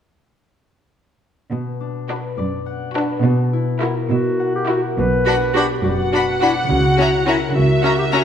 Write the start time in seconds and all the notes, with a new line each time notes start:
1.52 B2
1.80 D4
2.09 D4 F#4 B4
2.38 F#2 D5
2.66 F#5
2.95 D4 F#4 B4
3.24 B2
3.53 E4
3.81 E4 F#4 A#4
4.10 B2 F#4 E5
4.40 F#5
4.55 G4
4.69 E4 F#4 A#4
4.97 B1 B2 B4
5.26 D4 F#4 F#5 B5
5.54 D4 F#4 G4 B4 F#5 B5
5.83 F#1 F#2 F#4 D5 F#5
5.91 G4
5.98 F#4
6.12 D4 F#4 F#5 B5
6.41 D4 E4 F#4 D5 F#5 B5
6.69 C#2 C#3 F#4
6.97 C#4 E4 F#4 E5 A#5
7.26 C#4 E4 F#4 A#4 E5 A#5
7.54 C#2 C#3 F#4 E5
7.82 C#4 F#4 E5 F#5 A#5
7.98 G4
8.11 C#4 F#4 E5 A#5